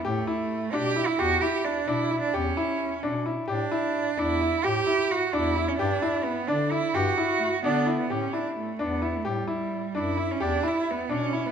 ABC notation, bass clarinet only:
X:1
M:5/8
L:1/8
Q:1/4=130
K:Amix
V:1 name="Bass clarinet" clef=bass
A,, z2 B,,2 | E,, z2 B,,2 | E,, z2 B,,2 | A,, z2 E,,2 |
A,, z2 E,,2 | G,, z2 D,2 | G,, z2 D,2 | A,, z2 E,,2 |
A,, z2 F,,2 | E,, z2 B,,2 |]